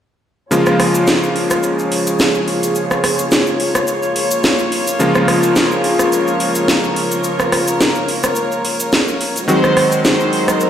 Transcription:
0.51 C#3 F3 G#3 A#3 F4 G#4 C#5, closed hi-hat, cabasa
0.66 cross-stick, cabasa
0.80 cross-stick, open hi-hat
0.95 closed hi-hat, cabasa
1.07 snare, closed hi-hat, cabasa
1.23 cabasa
1.36 open hi-hat
1.50 cross-stick, closed hi-hat, cabasa
1.63 closed hi-hat, cabasa
1.79 cabasa
1.92 open hi-hat
2.07 closed hi-hat, cabasa
2.19 snare, closed hi-hat, cabasa
2.34 cabasa
2.48 open hi-hat
2.63 closed hi-hat, cabasa
2.75 closed hi-hat, cabasa
2.91 cross-stick, cabasa
3.04 cross-stick, open hi-hat
3.19 closed hi-hat, cabasa
3.31 snare, closed hi-hat, cabasa
3.47 cabasa
3.60 open hi-hat
3.75 cross-stick, closed hi-hat, cabasa
3.87 closed hi-hat, cabasa
4.03 cabasa
4.16 open hi-hat
4.31 closed hi-hat, cabasa
4.44 snare, closed hi-hat, cabasa
4.59 cabasa
4.72 open hi-hat
4.87 closed hi-hat, cabasa
4.99 C#3 F3 G#3 A#3 F4 A#4, closed hi-hat, cabasa
5.15 cross-stick, cabasa
5.28 cross-stick, open hi-hat
5.43 closed hi-hat, cabasa
5.56 snare, closed hi-hat, cabasa
5.71 cabasa
5.84 open hi-hat
5.99 cross-stick, closed hi-hat, cabasa
6.12 closed hi-hat, cabasa
6.28 cabasa
6.40 open hi-hat
6.55 closed hi-hat, cabasa
6.68 snare, closed hi-hat, cabasa
6.84 cabasa
6.96 open hi-hat
7.12 closed hi-hat, cabasa
7.24 closed hi-hat, cabasa
7.39 cross-stick, cabasa
7.52 cross-stick, open hi-hat
7.68 closed hi-hat, cabasa
7.81 snare, closed hi-hat, cabasa
7.95 cabasa
8.08 open hi-hat
8.23 cross-stick, closed hi-hat, cabasa
8.35 closed hi-hat, cabasa
8.52 cabasa
8.65 open hi-hat
8.80 closed hi-hat, cabasa
8.92 snare, closed hi-hat, cabasa
9.08 cabasa
9.21 open hi-hat
9.36 closed hi-hat, cabasa
9.48 D#3 F#3 G#3 C4 D#4 F#4 C5, closed hi-hat, cabasa
9.64 cross-stick, cabasa
9.77 cross-stick, open hi-hat
9.92 closed hi-hat, cabasa
10.05 C5, snare, closed hi-hat, cabasa
10.20 cabasa
10.33 open hi-hat
10.48 cross-stick, closed hi-hat, cabasa
10.60 A#4, closed hi-hat, cabasa

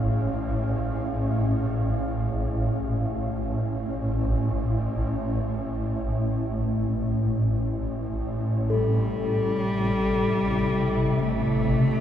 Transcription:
Already playing: A1 A2 C#4 G#4 C#5 F5
8.70 A1 C3 G3 A4
11.19 A3

